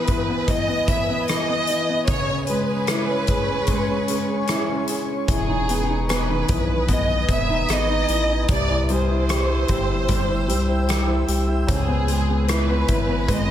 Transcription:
Already playing: grand piano E3 B3, violin section B4, ambient pad B4 G#5 D#6
0.07 grand piano E3, kick, closed hi-hat
0.29 grand piano B3
0.48 grand piano E3, violin section D#5, kick, closed hi-hat
0.68 grand piano B3
0.88 grand piano E3, violin section E5, kick, closed hi-hat
1.09 grand piano B3
1.28 grand piano E3, violin section D#5, cross-stick, closed hi-hat
1.49 grand piano B3
1.67 grand piano E3, closed hi-hat
1.89 grand piano B3
2.07 grand piano C#3, ambient pad C#4 G#4 C#6, violin section C#5, kick, closed hi-hat
2.30 grand piano C#4
2.47 grand piano G#3, violin section B4, closed hi-hat
2.70 grand piano C#4
2.87 grand piano E4, cross-stick, closed hi-hat
3.11 grand piano C#4
3.27 grand piano G#4, kick, closed hi-hat
3.50 grand piano C#4
3.67 grand piano G#3, kick, closed hi-hat
3.91 grand piano C#4
4.08 grand piano G#3, closed hi-hat
4.30 grand piano C#4
4.47 grand piano E4, cross-stick, closed hi-hat
4.70 grand piano C#4
4.88 grand piano G#4, closed hi-hat
5.10 grand piano C#4
5.28 sub bass E1, grand piano E3, violin section G#4, ambient pad B4 D#6, kick, closed hi-hat
5.48 grand piano D#4
5.69 grand piano B3, closed hi-hat
5.90 grand piano D#4
6.09 grand piano B3, violin section B4, cross-stick, closed hi-hat
6.29 grand piano D#3
6.48 sub bass B1, grand piano E3, kick, closed hi-hat
6.88 grand piano B3, violin section D#5, kick, closed hi-hat
7.28 sub bass E1, grand piano B3, kick, closed hi-hat
7.33 violin section E5
7.50 grand piano D#4
7.68 sub bass G#1, grand piano B3, cross-stick, closed hi-hat
7.74 violin section D#5
7.89 grand piano D#4
8.08 sub bass A1, grand piano E3, closed hi-hat
8.30 grand piano D#4
8.48 sub bass C2, grand piano C3, ambient pad C5 G5 E6, violin section D5, kick, closed hi-hat
8.70 grand piano E4
8.89 grand piano G3, closed hi-hat
8.93 violin section C5
9.11 grand piano E4
9.29 grand piano G4, cross-stick, closed hi-hat
9.50 grand piano E4
9.68 sub bass G1, grand piano G4, kick, closed hi-hat
9.89 grand piano E4
10.08 grand piano G3, kick, closed hi-hat
10.29 grand piano E4
10.48 sub bass C2, grand piano G3, closed hi-hat
10.68 grand piano E4
10.88 grand piano G4, cross-stick, closed hi-hat
11.07 grand piano E4
11.27 sub bass C2, grand piano G4, closed hi-hat
11.48 grand piano E4
11.67 sub bass C#2, grand piano C#3, ambient pad C#5 G#5 B5, kick, closed hi-hat
11.73 violin section G#4
11.88 grand piano B3
12.08 grand piano G#3, closed hi-hat
12.29 grand piano B3
12.48 grand piano E4, violin section B4, cross-stick, closed hi-hat
12.69 grand piano B3
12.88 sub bass G#1, grand piano E4, kick, closed hi-hat
13.09 grand piano B3
13.27 grand piano G#3, kick, closed hi-hat
13.32 violin section D#5

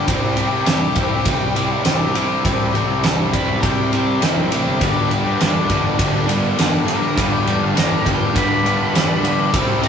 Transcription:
Already playing: lead electric guitar G4
0.07 picked electric bass C2, overdriven electric guitar C3 G3 C4 E4 G4, kick, ride
0.36 overdriven electric guitar C3 G3 C4 E4 G4, ride
0.52 picked electric bass C3
0.66 overdriven electric guitar C3 G3 C4 E4 G4, lead electric guitar G4, snare, ride
0.95 picked electric bass C2, overdriven electric guitar C3 G3 C4 E4 G4, kick, ride
1.25 picked electric bass C2, overdriven electric guitar C3 G3 C4 E4 G4, kick, ride
1.55 overdriven electric guitar C3 G3 C4 E4 G4, ride
1.84 overdriven electric guitar C3 G3 C4 E4 G4, snare, ride
2.14 overdriven electric guitar C3 G3 C4 E4 G4, ride
2.44 picked electric bass C2, overdriven electric guitar C3 G3 C4 E4 G4, kick, ride
2.73 picked electric bass A1, overdriven electric guitar C3 G3 C4 E4 G4, ride
2.88 picked electric bass C2
3.02 overdriven electric guitar C3 G3 C4 E4 G4, snare, ride
3.32 overdriven electric guitar C3 G3 C4 E4 G4, lead electric guitar B4, kick, ride
3.61 overdriven electric guitar C3 G3 C4 E4 G4, picked electric bass C3, lead electric guitar G4, kick, ride
3.91 overdriven electric guitar C3 G3 C4 E4 G4, lead electric guitar G4, ride
4.22 overdriven electric guitar C3 G3 C4 E4 G4, lead electric guitar E4, snare, ride
4.37 picked electric bass B1
4.51 picked electric bass A1, overdriven electric guitar C3 G3 C4 E4 G4, lead electric guitar G4, ride
4.67 picked electric bass G1
4.80 picked electric bass G1, overdriven electric guitar G2 D3 G3 B3 D4 G4, kick, ride
5.11 overdriven electric guitar G2 D3 G3 B3 D4 G4, ride
5.25 picked electric bass G2
5.41 overdriven electric guitar G2 D3 G3 B3 D4 G4, lead electric guitar D4, snare, ride
5.69 picked electric bass G1, overdriven electric guitar G2 D3 G3 B3 D4 G4, kick, ride
5.99 picked electric bass G1, overdriven electric guitar G2 D3 G3 B3 D4 G4, kick, ride
6.27 overdriven electric guitar G2 D3 G3 B3 D4 G4, ride
6.58 overdriven electric guitar G2 D3 G3 B3 D4 G4, snare, ride
6.87 overdriven electric guitar G2 D3 G3 B3 D4 G4, lead electric guitar A#4, ride
7.17 picked electric bass G1, overdriven electric guitar G2 D3 G3 B3 D4 G4, lead electric guitar F5, kick, ride
7.33 lead electric guitar G5
7.46 picked electric bass E1, overdriven electric guitar G2 D3 G3 B3 D4 G4, ride
7.61 picked electric bass G1, lead electric guitar F5
7.76 overdriven electric guitar G2 D3 G3 B3 D4 G4, lead electric guitar A#5, snare, ride
8.06 overdriven electric guitar G2 D3 G3 B3 D4 G4, lead electric guitar G5, kick, ride
8.35 overdriven electric guitar G2 D3 G3 B3 D4 G4, picked electric bass G2, lead electric guitar B5, kick, ride
8.64 overdriven electric guitar G2 D3 G3 B3 D4 G4, ride
8.95 overdriven electric guitar G2 D3 G3 B3 D4 G4, snare, ride
9.23 picked electric bass G2, overdriven electric guitar G2 D3 G3 B3 D4 G4, ride
9.54 picked electric bass C2, overdriven electric guitar C3 G3 C4 E4 G4, kick, ride
9.83 overdriven electric guitar C3 G3 C4 E4, lead electric guitar A#5, ride

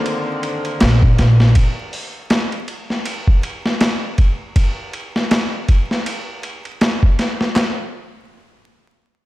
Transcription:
Already playing: string section D3 D#3 A#3 C4
0.06 ride
0.43 ride
0.65 ride
0.80 upright bass A#1, snare, ride
1.03 kick
1.19 upright bass A#1, snare, ride
1.40 snare
1.55 kick, ride
1.93 open hi-hat
2.30 snare, ride
2.52 ride
2.68 ride
2.90 snare
3.06 ride
3.28 kick
3.43 ride
3.66 snare
3.81 snare, ride
4.18 kick, ride
4.56 kick, ride
4.93 ride
5.16 snare
5.31 snare, ride
5.68 kick, ride
5.91 snare
6.06 ride
6.43 ride
6.65 ride
6.81 snare, ride
7.03 kick
7.19 snare, ride
7.41 snare
7.56 snare, clap

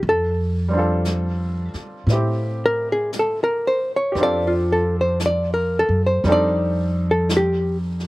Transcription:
0.01 upright bass F2, brush sweep
0.09 hollow-body jazz guitar A4
0.68 grand piano G3 C4
0.73 grand piano D4 F4
0.79 grand piano A4
1.05 brush sweep, snare, hi-hat pedal
1.74 muted upright bass stroke, snare
2.07 upright bass A2, grand piano C4, brush sweep, snare
2.11 grand piano E4 G4
2.66 hollow-body jazz guitar A#4
2.92 hollow-body jazz guitar G#4
3.13 brush sweep, snare, hi-hat pedal
3.19 hollow-body jazz guitar A4
3.44 hollow-body jazz guitar A#4
3.67 hollow-body jazz guitar C5
3.96 hollow-body jazz guitar C#5
4.12 upright bass F2, grand piano C4 G4, brush sweep, snare
4.18 grand piano D4 F4
4.23 grand piano A4, hollow-body jazz guitar D5
4.47 hollow-body jazz guitar F4
4.72 hollow-body jazz guitar A4
5.01 hollow-body jazz guitar C5
5.20 brush sweep, snare, hi-hat pedal
5.26 hollow-body jazz guitar D5
5.54 hollow-body jazz guitar A#4
5.79 hollow-body jazz guitar A4
5.89 upright bass F#2
6.06 hollow-body jazz guitar C5
6.24 upright bass F2, grand piano G3 C4 D4, brush sweep, snare
6.28 grand piano D#4 A4, hollow-body jazz guitar D5
7.11 hollow-body jazz guitar A4
7.29 brush sweep, snare, hi-hat pedal
7.37 hollow-body jazz guitar G4
8.00 snare

